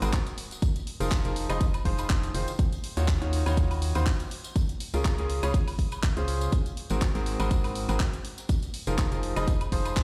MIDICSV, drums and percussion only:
0, 0, Header, 1, 2, 480
1, 0, Start_track
1, 0, Tempo, 491803
1, 609, Time_signature, 4, 2, 24, 8
1, 9790, End_track
2, 0, Start_track
2, 0, Title_t, "Drums"
2, 20, Note_on_c, 9, 42, 44
2, 20, Note_on_c, 9, 76, 62
2, 21, Note_on_c, 9, 54, 85
2, 117, Note_off_c, 9, 42, 0
2, 117, Note_off_c, 9, 76, 0
2, 119, Note_off_c, 9, 54, 0
2, 128, Note_on_c, 9, 36, 118
2, 128, Note_on_c, 9, 39, 127
2, 129, Note_on_c, 9, 42, 72
2, 226, Note_off_c, 9, 36, 0
2, 226, Note_off_c, 9, 39, 0
2, 227, Note_off_c, 9, 42, 0
2, 259, Note_on_c, 9, 42, 43
2, 262, Note_on_c, 9, 54, 39
2, 357, Note_off_c, 9, 42, 0
2, 359, Note_off_c, 9, 54, 0
2, 368, Note_on_c, 9, 46, 112
2, 466, Note_off_c, 9, 46, 0
2, 500, Note_on_c, 9, 42, 42
2, 510, Note_on_c, 9, 54, 80
2, 597, Note_off_c, 9, 42, 0
2, 607, Note_off_c, 9, 54, 0
2, 608, Note_on_c, 9, 36, 126
2, 609, Note_on_c, 9, 42, 69
2, 611, Note_on_c, 9, 54, 73
2, 706, Note_off_c, 9, 36, 0
2, 707, Note_off_c, 9, 42, 0
2, 709, Note_off_c, 9, 54, 0
2, 740, Note_on_c, 9, 42, 41
2, 741, Note_on_c, 9, 54, 42
2, 838, Note_off_c, 9, 42, 0
2, 839, Note_off_c, 9, 54, 0
2, 849, Note_on_c, 9, 46, 112
2, 947, Note_off_c, 9, 46, 0
2, 980, Note_on_c, 9, 42, 42
2, 982, Note_on_c, 9, 54, 87
2, 1078, Note_off_c, 9, 42, 0
2, 1080, Note_off_c, 9, 54, 0
2, 1088, Note_on_c, 9, 36, 117
2, 1088, Note_on_c, 9, 39, 125
2, 1089, Note_on_c, 9, 42, 67
2, 1091, Note_on_c, 9, 54, 73
2, 1186, Note_off_c, 9, 36, 0
2, 1186, Note_off_c, 9, 39, 0
2, 1187, Note_off_c, 9, 42, 0
2, 1189, Note_off_c, 9, 54, 0
2, 1212, Note_on_c, 9, 54, 40
2, 1220, Note_on_c, 9, 42, 43
2, 1310, Note_off_c, 9, 54, 0
2, 1317, Note_off_c, 9, 42, 0
2, 1329, Note_on_c, 9, 46, 110
2, 1426, Note_off_c, 9, 46, 0
2, 1460, Note_on_c, 9, 42, 40
2, 1460, Note_on_c, 9, 76, 81
2, 1463, Note_on_c, 9, 54, 81
2, 1557, Note_off_c, 9, 42, 0
2, 1557, Note_off_c, 9, 76, 0
2, 1560, Note_off_c, 9, 54, 0
2, 1567, Note_on_c, 9, 54, 68
2, 1568, Note_on_c, 9, 36, 127
2, 1568, Note_on_c, 9, 42, 69
2, 1664, Note_off_c, 9, 54, 0
2, 1666, Note_off_c, 9, 36, 0
2, 1666, Note_off_c, 9, 42, 0
2, 1697, Note_on_c, 9, 54, 38
2, 1700, Note_on_c, 9, 42, 41
2, 1700, Note_on_c, 9, 76, 60
2, 1795, Note_off_c, 9, 54, 0
2, 1798, Note_off_c, 9, 42, 0
2, 1798, Note_off_c, 9, 76, 0
2, 1808, Note_on_c, 9, 36, 62
2, 1809, Note_on_c, 9, 46, 110
2, 1906, Note_off_c, 9, 36, 0
2, 1907, Note_off_c, 9, 46, 0
2, 1936, Note_on_c, 9, 54, 91
2, 1940, Note_on_c, 9, 42, 42
2, 1940, Note_on_c, 9, 76, 60
2, 2034, Note_off_c, 9, 54, 0
2, 2038, Note_off_c, 9, 42, 0
2, 2038, Note_off_c, 9, 76, 0
2, 2048, Note_on_c, 9, 36, 124
2, 2048, Note_on_c, 9, 39, 127
2, 2049, Note_on_c, 9, 42, 67
2, 2049, Note_on_c, 9, 54, 71
2, 2145, Note_off_c, 9, 39, 0
2, 2146, Note_off_c, 9, 36, 0
2, 2146, Note_off_c, 9, 42, 0
2, 2147, Note_off_c, 9, 54, 0
2, 2180, Note_on_c, 9, 42, 41
2, 2183, Note_on_c, 9, 54, 44
2, 2278, Note_off_c, 9, 42, 0
2, 2280, Note_off_c, 9, 54, 0
2, 2289, Note_on_c, 9, 46, 113
2, 2386, Note_off_c, 9, 46, 0
2, 2417, Note_on_c, 9, 54, 81
2, 2420, Note_on_c, 9, 42, 41
2, 2515, Note_off_c, 9, 54, 0
2, 2518, Note_off_c, 9, 42, 0
2, 2528, Note_on_c, 9, 36, 127
2, 2529, Note_on_c, 9, 42, 64
2, 2538, Note_on_c, 9, 54, 66
2, 2626, Note_off_c, 9, 36, 0
2, 2626, Note_off_c, 9, 42, 0
2, 2636, Note_off_c, 9, 54, 0
2, 2660, Note_on_c, 9, 42, 38
2, 2661, Note_on_c, 9, 54, 41
2, 2758, Note_off_c, 9, 42, 0
2, 2759, Note_off_c, 9, 54, 0
2, 2769, Note_on_c, 9, 46, 117
2, 2867, Note_off_c, 9, 46, 0
2, 2899, Note_on_c, 9, 54, 83
2, 2900, Note_on_c, 9, 42, 39
2, 2996, Note_off_c, 9, 54, 0
2, 2997, Note_off_c, 9, 42, 0
2, 3007, Note_on_c, 9, 39, 125
2, 3008, Note_on_c, 9, 36, 123
2, 3008, Note_on_c, 9, 42, 63
2, 3105, Note_off_c, 9, 39, 0
2, 3106, Note_off_c, 9, 36, 0
2, 3106, Note_off_c, 9, 42, 0
2, 3140, Note_on_c, 9, 42, 39
2, 3140, Note_on_c, 9, 54, 38
2, 3237, Note_off_c, 9, 42, 0
2, 3237, Note_off_c, 9, 54, 0
2, 3249, Note_on_c, 9, 46, 115
2, 3347, Note_off_c, 9, 46, 0
2, 3380, Note_on_c, 9, 42, 39
2, 3380, Note_on_c, 9, 76, 82
2, 3389, Note_on_c, 9, 54, 82
2, 3477, Note_off_c, 9, 42, 0
2, 3477, Note_off_c, 9, 76, 0
2, 3487, Note_off_c, 9, 54, 0
2, 3488, Note_on_c, 9, 36, 127
2, 3489, Note_on_c, 9, 42, 70
2, 3496, Note_on_c, 9, 54, 69
2, 3585, Note_off_c, 9, 36, 0
2, 3586, Note_off_c, 9, 42, 0
2, 3594, Note_off_c, 9, 54, 0
2, 3619, Note_on_c, 9, 46, 67
2, 3619, Note_on_c, 9, 76, 62
2, 3621, Note_on_c, 9, 54, 43
2, 3717, Note_off_c, 9, 46, 0
2, 3717, Note_off_c, 9, 76, 0
2, 3719, Note_off_c, 9, 54, 0
2, 3728, Note_on_c, 9, 46, 113
2, 3826, Note_off_c, 9, 46, 0
2, 3855, Note_on_c, 9, 54, 84
2, 3859, Note_on_c, 9, 42, 39
2, 3859, Note_on_c, 9, 76, 62
2, 3953, Note_off_c, 9, 54, 0
2, 3957, Note_off_c, 9, 42, 0
2, 3957, Note_off_c, 9, 76, 0
2, 3968, Note_on_c, 9, 36, 127
2, 3968, Note_on_c, 9, 39, 126
2, 3969, Note_on_c, 9, 42, 65
2, 3972, Note_on_c, 9, 54, 71
2, 4065, Note_off_c, 9, 36, 0
2, 4065, Note_off_c, 9, 39, 0
2, 4066, Note_off_c, 9, 42, 0
2, 4069, Note_off_c, 9, 54, 0
2, 4095, Note_on_c, 9, 54, 43
2, 4100, Note_on_c, 9, 42, 39
2, 4193, Note_off_c, 9, 54, 0
2, 4197, Note_off_c, 9, 42, 0
2, 4209, Note_on_c, 9, 46, 119
2, 4306, Note_off_c, 9, 46, 0
2, 4336, Note_on_c, 9, 54, 78
2, 4340, Note_on_c, 9, 42, 39
2, 4434, Note_off_c, 9, 54, 0
2, 4437, Note_off_c, 9, 42, 0
2, 4448, Note_on_c, 9, 36, 127
2, 4449, Note_on_c, 9, 42, 64
2, 4451, Note_on_c, 9, 54, 76
2, 4545, Note_off_c, 9, 36, 0
2, 4546, Note_off_c, 9, 42, 0
2, 4548, Note_off_c, 9, 54, 0
2, 4579, Note_on_c, 9, 54, 41
2, 4580, Note_on_c, 9, 42, 38
2, 4676, Note_off_c, 9, 54, 0
2, 4677, Note_off_c, 9, 42, 0
2, 4689, Note_on_c, 9, 46, 110
2, 4786, Note_off_c, 9, 46, 0
2, 4818, Note_on_c, 9, 54, 79
2, 4820, Note_on_c, 9, 42, 40
2, 4915, Note_off_c, 9, 54, 0
2, 4918, Note_off_c, 9, 42, 0
2, 4928, Note_on_c, 9, 36, 121
2, 4928, Note_on_c, 9, 39, 117
2, 4928, Note_on_c, 9, 54, 62
2, 4929, Note_on_c, 9, 42, 62
2, 5025, Note_off_c, 9, 36, 0
2, 5026, Note_off_c, 9, 39, 0
2, 5026, Note_off_c, 9, 54, 0
2, 5027, Note_off_c, 9, 42, 0
2, 5055, Note_on_c, 9, 54, 39
2, 5060, Note_on_c, 9, 42, 38
2, 5152, Note_off_c, 9, 54, 0
2, 5158, Note_off_c, 9, 42, 0
2, 5169, Note_on_c, 9, 46, 115
2, 5266, Note_off_c, 9, 46, 0
2, 5299, Note_on_c, 9, 54, 85
2, 5300, Note_on_c, 9, 42, 39
2, 5300, Note_on_c, 9, 76, 86
2, 5396, Note_off_c, 9, 54, 0
2, 5398, Note_off_c, 9, 42, 0
2, 5398, Note_off_c, 9, 76, 0
2, 5408, Note_on_c, 9, 36, 127
2, 5408, Note_on_c, 9, 54, 73
2, 5409, Note_on_c, 9, 42, 66
2, 5505, Note_off_c, 9, 36, 0
2, 5505, Note_off_c, 9, 54, 0
2, 5507, Note_off_c, 9, 42, 0
2, 5539, Note_on_c, 9, 54, 38
2, 5540, Note_on_c, 9, 46, 65
2, 5540, Note_on_c, 9, 76, 64
2, 5636, Note_off_c, 9, 54, 0
2, 5638, Note_off_c, 9, 46, 0
2, 5638, Note_off_c, 9, 76, 0
2, 5648, Note_on_c, 9, 36, 63
2, 5649, Note_on_c, 9, 46, 110
2, 5745, Note_off_c, 9, 36, 0
2, 5747, Note_off_c, 9, 46, 0
2, 5775, Note_on_c, 9, 54, 81
2, 5780, Note_on_c, 9, 42, 38
2, 5780, Note_on_c, 9, 76, 66
2, 5873, Note_off_c, 9, 54, 0
2, 5878, Note_off_c, 9, 42, 0
2, 5878, Note_off_c, 9, 76, 0
2, 5888, Note_on_c, 9, 36, 124
2, 5888, Note_on_c, 9, 39, 125
2, 5889, Note_on_c, 9, 42, 66
2, 5891, Note_on_c, 9, 54, 67
2, 5986, Note_off_c, 9, 36, 0
2, 5986, Note_off_c, 9, 39, 0
2, 5987, Note_off_c, 9, 42, 0
2, 5988, Note_off_c, 9, 54, 0
2, 6019, Note_on_c, 9, 54, 43
2, 6020, Note_on_c, 9, 42, 39
2, 6117, Note_off_c, 9, 54, 0
2, 6118, Note_off_c, 9, 42, 0
2, 6129, Note_on_c, 9, 46, 110
2, 6226, Note_off_c, 9, 46, 0
2, 6259, Note_on_c, 9, 42, 38
2, 6259, Note_on_c, 9, 54, 82
2, 6356, Note_off_c, 9, 54, 0
2, 6357, Note_off_c, 9, 42, 0
2, 6364, Note_on_c, 9, 54, 65
2, 6368, Note_on_c, 9, 36, 123
2, 6368, Note_on_c, 9, 42, 64
2, 6462, Note_off_c, 9, 54, 0
2, 6466, Note_off_c, 9, 36, 0
2, 6466, Note_off_c, 9, 42, 0
2, 6500, Note_on_c, 9, 42, 38
2, 6502, Note_on_c, 9, 54, 41
2, 6597, Note_off_c, 9, 42, 0
2, 6600, Note_off_c, 9, 54, 0
2, 6609, Note_on_c, 9, 46, 110
2, 6706, Note_off_c, 9, 46, 0
2, 6732, Note_on_c, 9, 54, 81
2, 6740, Note_on_c, 9, 42, 39
2, 6829, Note_off_c, 9, 54, 0
2, 6837, Note_off_c, 9, 42, 0
2, 6848, Note_on_c, 9, 36, 117
2, 6848, Note_on_c, 9, 39, 116
2, 6849, Note_on_c, 9, 42, 64
2, 6850, Note_on_c, 9, 54, 61
2, 6945, Note_off_c, 9, 36, 0
2, 6946, Note_off_c, 9, 39, 0
2, 6947, Note_off_c, 9, 42, 0
2, 6947, Note_off_c, 9, 54, 0
2, 6978, Note_on_c, 9, 54, 38
2, 6980, Note_on_c, 9, 42, 39
2, 7076, Note_off_c, 9, 54, 0
2, 7077, Note_off_c, 9, 42, 0
2, 7088, Note_on_c, 9, 46, 106
2, 7186, Note_off_c, 9, 46, 0
2, 7218, Note_on_c, 9, 54, 81
2, 7219, Note_on_c, 9, 42, 38
2, 7219, Note_on_c, 9, 76, 88
2, 7316, Note_off_c, 9, 54, 0
2, 7317, Note_off_c, 9, 42, 0
2, 7317, Note_off_c, 9, 76, 0
2, 7328, Note_on_c, 9, 36, 122
2, 7328, Note_on_c, 9, 42, 66
2, 7332, Note_on_c, 9, 54, 69
2, 7426, Note_off_c, 9, 36, 0
2, 7426, Note_off_c, 9, 42, 0
2, 7430, Note_off_c, 9, 54, 0
2, 7459, Note_on_c, 9, 54, 42
2, 7460, Note_on_c, 9, 46, 62
2, 7460, Note_on_c, 9, 76, 66
2, 7556, Note_off_c, 9, 54, 0
2, 7557, Note_off_c, 9, 46, 0
2, 7557, Note_off_c, 9, 76, 0
2, 7568, Note_on_c, 9, 46, 110
2, 7666, Note_off_c, 9, 46, 0
2, 7699, Note_on_c, 9, 42, 39
2, 7699, Note_on_c, 9, 76, 67
2, 7703, Note_on_c, 9, 54, 81
2, 7797, Note_off_c, 9, 42, 0
2, 7797, Note_off_c, 9, 76, 0
2, 7800, Note_off_c, 9, 54, 0
2, 7807, Note_on_c, 9, 39, 121
2, 7808, Note_on_c, 9, 36, 118
2, 7808, Note_on_c, 9, 42, 65
2, 7810, Note_on_c, 9, 54, 70
2, 7905, Note_off_c, 9, 39, 0
2, 7906, Note_off_c, 9, 36, 0
2, 7906, Note_off_c, 9, 42, 0
2, 7908, Note_off_c, 9, 54, 0
2, 7939, Note_on_c, 9, 42, 37
2, 7944, Note_on_c, 9, 54, 43
2, 8037, Note_off_c, 9, 42, 0
2, 8042, Note_off_c, 9, 54, 0
2, 8048, Note_on_c, 9, 46, 113
2, 8146, Note_off_c, 9, 46, 0
2, 8177, Note_on_c, 9, 54, 80
2, 8179, Note_on_c, 9, 42, 38
2, 8275, Note_off_c, 9, 54, 0
2, 8277, Note_off_c, 9, 42, 0
2, 8284, Note_on_c, 9, 54, 72
2, 8288, Note_on_c, 9, 36, 117
2, 8289, Note_on_c, 9, 42, 67
2, 8382, Note_off_c, 9, 54, 0
2, 8386, Note_off_c, 9, 36, 0
2, 8386, Note_off_c, 9, 42, 0
2, 8415, Note_on_c, 9, 54, 37
2, 8419, Note_on_c, 9, 42, 39
2, 8513, Note_off_c, 9, 54, 0
2, 8517, Note_off_c, 9, 42, 0
2, 8528, Note_on_c, 9, 46, 102
2, 8626, Note_off_c, 9, 46, 0
2, 8657, Note_on_c, 9, 54, 74
2, 8659, Note_on_c, 9, 42, 39
2, 8755, Note_off_c, 9, 54, 0
2, 8757, Note_off_c, 9, 42, 0
2, 8768, Note_on_c, 9, 36, 116
2, 8768, Note_on_c, 9, 39, 118
2, 8768, Note_on_c, 9, 42, 66
2, 8771, Note_on_c, 9, 54, 67
2, 8865, Note_off_c, 9, 39, 0
2, 8866, Note_off_c, 9, 36, 0
2, 8866, Note_off_c, 9, 42, 0
2, 8869, Note_off_c, 9, 54, 0
2, 8900, Note_on_c, 9, 42, 42
2, 8907, Note_on_c, 9, 54, 39
2, 8998, Note_off_c, 9, 42, 0
2, 9004, Note_off_c, 9, 54, 0
2, 9009, Note_on_c, 9, 46, 101
2, 9106, Note_off_c, 9, 46, 0
2, 9140, Note_on_c, 9, 42, 41
2, 9140, Note_on_c, 9, 76, 89
2, 9142, Note_on_c, 9, 54, 74
2, 9237, Note_off_c, 9, 42, 0
2, 9237, Note_off_c, 9, 76, 0
2, 9239, Note_off_c, 9, 54, 0
2, 9248, Note_on_c, 9, 36, 118
2, 9248, Note_on_c, 9, 42, 67
2, 9251, Note_on_c, 9, 54, 66
2, 9345, Note_off_c, 9, 36, 0
2, 9346, Note_off_c, 9, 42, 0
2, 9348, Note_off_c, 9, 54, 0
2, 9377, Note_on_c, 9, 54, 35
2, 9379, Note_on_c, 9, 42, 40
2, 9379, Note_on_c, 9, 76, 65
2, 9474, Note_off_c, 9, 54, 0
2, 9477, Note_off_c, 9, 42, 0
2, 9477, Note_off_c, 9, 76, 0
2, 9488, Note_on_c, 9, 36, 58
2, 9488, Note_on_c, 9, 46, 107
2, 9585, Note_off_c, 9, 36, 0
2, 9585, Note_off_c, 9, 46, 0
2, 9617, Note_on_c, 9, 54, 72
2, 9619, Note_on_c, 9, 42, 41
2, 9619, Note_on_c, 9, 76, 66
2, 9714, Note_off_c, 9, 54, 0
2, 9717, Note_off_c, 9, 42, 0
2, 9717, Note_off_c, 9, 76, 0
2, 9723, Note_on_c, 9, 54, 65
2, 9727, Note_on_c, 9, 39, 115
2, 9728, Note_on_c, 9, 36, 113
2, 9728, Note_on_c, 9, 42, 67
2, 9790, Note_off_c, 9, 36, 0
2, 9790, Note_off_c, 9, 39, 0
2, 9790, Note_off_c, 9, 42, 0
2, 9790, Note_off_c, 9, 54, 0
2, 9790, End_track
0, 0, End_of_file